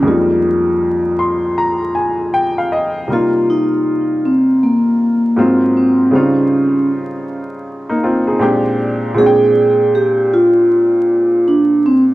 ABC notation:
X:1
M:4/4
L:1/16
Q:"Swing 16ths" 1/4=79
K:Fm
V:1 name="Upright piano"
z6 c'2 b2 a2 g f e2 | z16 | z8 z [B,E] [CF] [EA]2 z3 | [K:Bbmix] z16 |]
V:2 name="Upright piano"
[F,,G,A,B,E]16 | [C,G,B,EF]12 [A,,_G,B,CF]4 | [D,G,EFc]12 [B,,A,C=DG]4 | [K:Bbmix] [B,,A,CD_G=g]16 |]
V:3 name="Vibraphone"
F12- F2 z2 | F2 E4 C2 B,4 C2 C2 | D4 z12 | [K:Bbmix] A4 G2 F6 D2 C2 |]